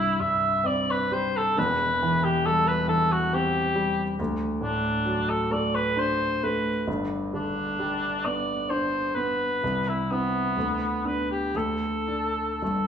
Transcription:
Already playing: C2 G2 G3 E4
0.20 G2 E5
0.64 C4 D5
0.91 B4
1.12 G3 C5
1.37 A4
1.57 E1 E2 B4
2.03 E3
2.24 G4
2.46 G3 A4
2.68 B4
2.88 E3 A4
3.12 F#4
3.32 C4 G4
3.75 G3
4.19 D2
4.61 A2 D4
5.06 F#3
5.29 A4
5.51 A3 D5
5.75 B4
5.96 D4 C5
6.43 A3 B4
6.87 G1 G2
7.33 D3 D4
7.79 G3
8.25 B3 D5
8.70 D4 C5
9.15 B3 B4
9.64 C2
9.89 E4
10.11 B3 C4 E4
10.57 D2
11.05 B3 D4 B4
11.31 G4
11.55 D2 A4
12.08 D4
12.62 G1 G2 A4

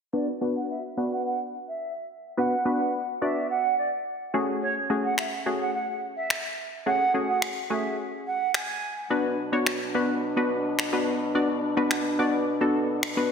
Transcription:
0.13 B3 D4 F#4 B4 D5
0.41 B3 D4 F#4 B4
0.55 F#5
0.70 E5
0.97 B3 D4 F#4 B4
1.12 F#5
1.25 F#5
1.68 E5
2.37 B3 D4 F#4 B4 F#5
2.65 B3 D4 F#4 B4
2.80 F#5
3.22 B3 D4 F#4 D5 E5
3.49 F#5
3.78 D5
4.34 A3 C#4 F#4 G#4
4.62 C#5
4.90 A3 C#4 F#4 G#4
5.04 F#5
5.18 E5, finger snap
5.46 A3 C#4 F#4 G#4
5.60 F#5
5.74 F#5
6.16 E5
6.30 finger snap
6.86 A3 C#4 F#4 G#4 F#5
7.14 A3 C#4 F#4 G#4
7.28 F#5
7.42 finger snap
7.70 A3 C#4 F#4 G#4 E5
8.26 F#5
8.54 G#5, finger snap
9.10 B2 F#3 B3 D4 F#4 B4
9.52 B3 D4 F#4 C#5
9.66 finger snap
9.95 B3 D4 F#4 B4
10.37 B3 D4 F#4 B4
10.79 finger snap
10.93 B3 D4 F#4 B4
11.35 B3 D4 F#4 D5
11.77 B3 D4 F#4 B4
11.91 finger snap
12.19 B3 D4 F#4 D5
12.61 B3 D4 F#4 A4
13.03 finger snap
13.17 B3 D4 F#4 B4

